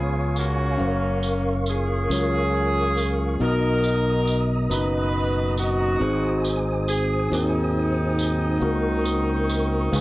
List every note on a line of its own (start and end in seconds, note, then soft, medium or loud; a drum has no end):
0.00 0.76 C#2 loud
0.00 0.75 C#3 medium
0.00 0.77 B3 medium
0.00 0.67 C#4 medium
0.00 0.77 F4 medium
0.00 0.34 G#4 medium
0.00 0.68 G#4 medium
0.00 0.69 C#5 medium
0.00 0.78 C#5 medium
0.00 0.71 F5 medium
0.00 3.36 F5 medium
0.00 0.78 G#5 medium
0.00 0.69 B5 medium
0.00 3.36 C#6 medium
0.36 1.64 A#3 medium
0.36 1.64 C#4 medium
0.36 1.41 F#4 loud
0.36 tambourine medium
0.78 2.06 F#1 loud
0.78 1.98 F#3 medium
0.78 1.98 C#4 medium
0.78 3.38 A#4 medium
0.78 1.99 A#4 medium
0.78 0.87 C5 medium
0.78 1.98 F5 medium
0.87 2.03 C#5 medium
1.23 tambourine medium
1.66 3.38 C#4 medium
1.66 3.38 F4 medium
1.66 3.38 G#4 loud
1.66 tambourine medium
2.09 3.36 C#2 medium
2.09 3.29 F#3 medium
2.09 3.29 C#4 medium
2.09 3.29 F4 medium
2.09 3.30 A#4 medium
2.09 3.30 C#5 medium
2.09 tambourine medium
2.97 tambourine medium
3.39 4.67 B1 loud
3.39 4.67 B2 medium
3.39 4.59 B3 medium
3.39 4.59 D#4 medium
3.39 4.54 D#4 medium
3.39 4.60 F#4 medium
3.39 4.54 F#4 medium
3.39 4.60 A#4 medium
3.39 4.54 A#4 loud
3.39 5.99 D#5 medium
3.39 4.60 D#5 medium
3.39 5.99 A#5 medium
3.39 8.58 D#6 medium
3.83 tambourine medium
4.27 tambourine medium
4.70 5.97 F#1 loud
4.70 4.77 C#4 medium
4.70 5.59 D#4 medium
4.70 5.90 F#4 medium
4.70 5.58 F#4 medium
4.70 5.89 B4 medium
4.70 5.58 B4 loud
4.70 5.91 D#5 medium
4.70 5.91 A#5 medium
4.70 tambourine loud
4.77 5.93 D#4 medium
5.58 6.85 C4 medium
5.58 6.85 D#4 medium
5.58 6.58 F#4 loud
5.58 tambourine medium
6.00 7.27 G#1 loud
6.00 7.28 G#2 medium
6.00 7.20 C4 medium
6.00 7.20 D#4 medium
6.00 7.21 F#4 medium
6.00 7.21 G#4 medium
6.00 8.60 C5 medium
6.00 7.21 C5 medium
6.00 8.60 G#5 medium
6.45 tambourine medium
6.88 7.29 G#4 loud
6.88 tambourine medium
7.29 8.58 D#2 loud
7.29 10.01 F#3 medium
7.29 8.50 C4 medium
7.29 10.01 C4 medium
7.29 8.50 D#4 medium
7.29 10.01 D#4 medium
7.29 8.51 F#4 medium
7.29 8.51 G#4 medium
7.29 8.51 A#4 medium
7.29 tambourine loud
8.19 tambourine medium
8.60 9.88 C#2 loud
8.60 9.88 C#3 medium
8.60 9.80 A#3 medium
8.60 9.81 F#4 medium
8.60 9.91 A#4 medium
8.60 9.81 A#4 medium
8.60 9.90 C#6 medium
9.05 tambourine medium
9.49 tambourine medium
9.91 10.01 C#2 loud
9.91 10.01 C#3 medium
9.91 10.01 G#3 medium
9.91 10.01 G#4 medium
9.91 10.01 B4 medium
9.91 10.01 F5 medium
9.91 10.01 G#5 medium
9.91 10.01 C#6 medium
9.91 tambourine medium